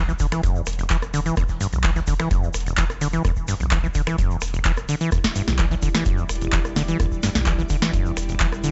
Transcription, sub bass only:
0.00 0.14 B1 medium
0.32 0.40 E1 medium
0.67 0.96 E1 loud
1.02 1.31 E1 medium
1.37 1.66 E1 loud
1.73 2.01 B1 medium
2.20 2.27 E1 loud
2.54 2.83 E1 loud
2.90 3.19 E1 medium
3.25 3.54 E1 loud
3.60 3.89 B1 medium
4.07 4.15 E1 loud
4.42 4.71 E1 medium
4.77 4.85 E1 medium
5.12 5.41 E1 loud
5.48 5.76 B1 loud
5.95 6.02 E1 loud
6.29 6.58 E1 medium
6.65 6.94 E1 medium
7.00 7.29 E1 loud
7.35 7.64 B1 loud
7.82 7.90 E1 medium
8.17 8.46 E1 loud
8.52 8.71 E1 medium

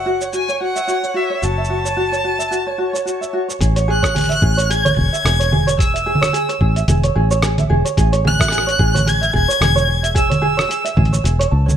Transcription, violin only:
0.00 0.30 F#5 medium
0.35 0.60 G#5 medium
0.63 1.18 F#5 loud
1.16 1.45 E5 medium
1.44 3.34 A5 medium
3.91 4.72 F#6 loud
4.70 4.96 G#6 loud
4.97 5.75 G#6 loud
5.80 6.85 E6 medium
8.27 9.10 F#6 loud
9.09 9.35 G#6 loud
9.36 10.13 G#6 loud
10.18 11.22 E6 medium

